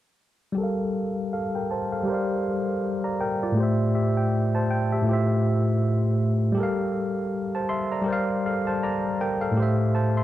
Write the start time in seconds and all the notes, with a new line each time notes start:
0.52 G3 G4
0.58 A4 A#4
0.63 F5
1.33 A4 F5
1.55 A#4 G5
1.71 C5 A5
1.92 A4 F5
2.03 G3 G4
2.07 A#4 C5
2.12 D5 F5
3.04 D5 A#5
3.21 A#4 G5
3.43 F4 D5
3.52 A2 A3
3.57 G4 C5
3.63 E5
3.95 G4 E5
4.17 G5
4.55 C5 A5
4.70 G5
4.92 G4 E5
5.02 A2 A3
5.07 F4 G4
5.11 C5 E5
6.52 G3 G4
6.58 A4 A#4
6.63 F5
7.55 C5 A5
7.69 E5 C6
7.92 D5 A#5
8.02 G3 G4
8.06 A#4 C5
8.11 D5 F5
8.46 A4 F5
8.67 C5 A5
8.83 D5 A#5
9.21 A#4 G5
9.41 A4 F5
9.51 A2 A3
9.57 G4 C5
9.62 E5
9.95 C5 A5
10.17 E5 C6